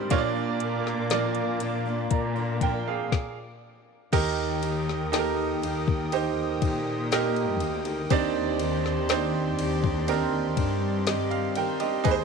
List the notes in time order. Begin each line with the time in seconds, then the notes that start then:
Already playing: G3 C4 D4 D#4 F4 G4 A#4 D5
0.10 A#2 F3 A#3 D4 F4 A#4 C#5 F5 D6, kick, closed hi-hat
0.18 D5
0.35 A#3 D4 F4
0.60 closed hi-hat
0.87 snare
1.10 A#2 F3 A#3 D4 F4 D5, snare, closed hi-hat
1.35 closed hi-hat
1.60 F3 A#3 D4 F4, closed hi-hat
1.86 A#3 D4 F4
2.11 A#2 D5 A#5, kick, closed hi-hat
2.36 A#3 D4 F4
2.61 F3 A#3 D4 F4 A#4 G5, kick, closed hi-hat
2.88 G#4 F5
3.12 kick, snare
4.12 D#2 D#3 A#3 D#4 G4 A#4 G5 D#6, kick, crash, ride
4.62 D#3 A#3 D#4 G4, ride
4.89 snare
5.12 D#3 A#3 D#4 G4 A4, snare, ride
5.19 A#4
5.62 D#2 D#3 A#3 D#4 G4, ride
5.87 A#3 D#4 G4, kick
6.12 D#4 G4 C5, ride
6.62 A#2 D#3 A#3 D#4 G4, kick, ride
7.11 D#3 A#3 D#4 G4 A#4, snare, ride
7.36 ride
7.60 D2 D#3 A#3 D#4 G4, ride
7.85 A#3 D#4 G4, ride
8.10 D#2 D#3 C4 D4 D#4 G4 D5 C6, kick, ride
8.59 D#3 C4 D4 G4, ride
8.86 snare
9.09 D#3 C4 D4 D#4 G4 C5, snare, ride
9.59 D#2 D#3 C4 D4 G4, ride
9.84 C4 D4 G4, kick
10.08 C4 D4 D#4 G4 A#4, ride
10.57 G2 D#3 C4 D4 G4, kick, ride
11.07 D#3 C4 D4 G4 D#5, snare, ride
11.31 F5, ride
11.55 D#3 C4 D4 G4 A#4 G5, ride
11.80 C4 D4 G4 D#5, ride
12.04 D#2 D#3 G#3 C4 D#4 G#4 B4 C5 C6, kick, ride
12.11 C5